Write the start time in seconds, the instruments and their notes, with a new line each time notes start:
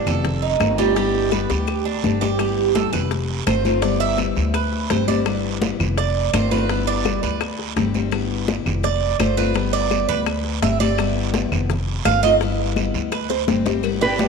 Already playing: steel-string acoustic guitar G3 B3 E4
0.06 upright bass F1, cuban tres A4, high conga, low conga, short guiro, claves
0.25 muted steel-string acoustic guitar stroke, high bongo, high conga, low conga, long guiro
0.42 cuban tres D#4, high conga
0.60 upright bass G1, steel-string acoustic guitar D#3 A3 C4 F4, high bongo, low bongo, high conga, short guiro, claves
0.78 steel-string acoustic guitar D#3 A3 C4 F4, cuban tres G3, high conga, short guiro
0.96 steel-string acoustic guitar G3 B3 E4, cuban tres G3, high bongo, high conga, long guiro
1.14 high bongo, high conga
1.32 steel-string acoustic guitar G3 B3 E4, cuban tres B3, high bongo, high conga, short guiro, claves
1.50 upright bass D2, cuban tres G4, high bongo, high conga, short guiro
1.67 muted steel-string acoustic guitar stroke, high bongo, high conga, long guiro, claves
1.85 cuban tres D4, high conga
2.03 upright bass G1, steel-string acoustic guitar D3 G3 C4 G4, low bongo, high conga, short guiro
2.21 steel-string acoustic guitar G3 C4 G4, cuban tres G4, low bongo, high conga, short guiro
2.39 steel-string acoustic guitar G3 B3 E4, cuban tres G4, high bongo, high conga, long guiro, claves
2.58 high conga
2.75 steel-string acoustic guitar G3 B3 E4, cuban tres A4, high bongo, high conga, short guiro
2.93 upright bass F1, cuban tres B4, high conga, low conga, short guiro, claves
3.11 muted steel-string acoustic guitar stroke, high bongo, high conga, long guiro
3.30 high conga
3.47 upright bass G1, steel-string acoustic guitar D#3 A3 C4 F4, cuban tres C5, high bongo, low bongo, high conga, short guiro, claves
3.65 steel-string acoustic guitar D#3 A3 C4 F4, high conga, short guiro
3.82 steel-string acoustic guitar G3 B3 E4, cuban tres D5, high bongo, long guiro
4.00 cuban tres E5, high bongo, high conga
4.18 steel-string acoustic guitar G3 B3 E4, high bongo, high conga, short guiro, claves
4.36 upright bass D2, high bongo, high conga, short guiro
4.54 cuban tres B4, muted steel-string acoustic guitar stroke, high bongo, high conga, long guiro, claves
4.72 high bongo, high conga
4.90 upright bass G1, steel-string acoustic guitar D3 G3 C4 G4, cuban tres C5, high bongo, low bongo, high conga, short guiro
5.08 steel-string acoustic guitar G3 C4 G4, cuban tres D5, high conga, short guiro
5.26 steel-string acoustic guitar G3 B3 E4, high bongo, high conga, long guiro, claves
5.44 high conga
5.62 steel-string acoustic guitar G3 B3 E4, high bongo, high conga, short guiro
5.80 upright bass F1, high conga, low conga, short guiro, claves
5.98 cuban tres D5, muted steel-string acoustic guitar stroke, high bongo, high conga, long guiro
6.16 high conga
6.33 upright bass G1, steel-string acoustic guitar D#3 A3 C4 F4, cuban tres C5, high bongo, low bongo, high conga, short guiro, claves
6.51 steel-string acoustic guitar D#3 A3 C4 F4, cuban tres B4, high conga, short guiro
6.69 steel-string acoustic guitar G3 B3 E4, high bongo, high conga, long guiro
6.87 cuban tres D5, high bongo, high conga
7.05 steel-string acoustic guitar G3 B3 E4, high bongo, high conga, short guiro, claves
7.23 upright bass D2, cuban tres B4, high bongo, high conga, short guiro
7.41 muted steel-string acoustic guitar stroke, high bongo, high conga, long guiro, claves
7.59 high bongo, high conga
7.76 upright bass G1, steel-string acoustic guitar D3 G3 C4 G4, high bongo, low bongo, high conga, short guiro
7.94 steel-string acoustic guitar G3 C4 G4, high conga, short guiro
8.11 steel-string acoustic guitar G3 B3 E4, high bongo, high conga, long guiro, claves
8.31 high conga
8.47 steel-string acoustic guitar G3 B3 E4, high bongo, high conga, short guiro
8.66 upright bass F1, high conga, low conga, short guiro, claves
8.83 cuban tres D5, muted steel-string acoustic guitar stroke, high bongo, high conga, long guiro
9.02 high conga
9.20 upright bass G1, steel-string acoustic guitar D#3 A3 C4 F4, cuban tres C5, high bongo, low bongo, high conga, short guiro, claves
9.37 steel-string acoustic guitar D#3 A3 C4 F4, cuban tres B4, high conga, short guiro
9.54 steel-string acoustic guitar G3 B3 E4, high bongo, long guiro
9.73 cuban tres D5, high bongo, high conga
9.90 steel-string acoustic guitar G3 B3 E4, high bongo, high conga, short guiro, claves
10.09 upright bass D2, cuban tres B4, high bongo, high conga, short guiro
10.26 muted steel-string acoustic guitar stroke, high bongo, high conga, long guiro, claves
10.44 high bongo, high conga
10.62 upright bass G1, steel-string acoustic guitar D3 G3 C4 G4, cuban tres E5, high bongo, low bongo, high conga, short guiro
10.80 steel-string acoustic guitar G3 C4 G4, cuban tres D5, high conga, short guiro
10.98 steel-string acoustic guitar G3 B3 E4, high bongo, high conga, long guiro, claves
11.17 high conga
11.34 steel-string acoustic guitar G3 B3 E4, high bongo, high conga, short guiro
11.52 upright bass F1, high conga, low conga, short guiro, claves
11.70 muted steel-string acoustic guitar stroke, high bongo, high conga, low conga, long guiro
11.88 high conga
12.05 upright bass G1, steel-string acoustic guitar D#3 A3 C4 F4, cuban tres F5, high bongo, low bongo, high conga, short guiro, claves
12.23 steel-string acoustic guitar D#3 A3 C4 F4, cuban tres D#5, high conga, short guiro
12.41 steel-string acoustic guitar G3 B3 E4, high bongo, high conga, long guiro
12.58 high bongo, high conga
12.76 steel-string acoustic guitar G3 B3 E4, high bongo, high conga, short guiro, claves
12.94 upright bass D2, high bongo, high conga, short guiro
13.12 cuban tres B4, muted steel-string acoustic guitar stroke, high bongo, high conga, long guiro, claves
13.30 cuban tres C5, high bongo, high conga
13.47 upright bass G1, steel-string acoustic guitar D3 G3 C4 G4, high bongo, high conga, short guiro
13.66 steel-string acoustic guitar G3 C4 G4, low bongo, high conga, short guiro
13.83 steel-string acoustic guitar G3 B3 E4, cowbell, long guiro, claves
14.01 steel-string acoustic guitar B3 E4, cuban tres D4, violin section G4, nylon-string guitar B4
14.19 steel-string acoustic guitar G3 B3 E4, cowbell, high conga, short guiro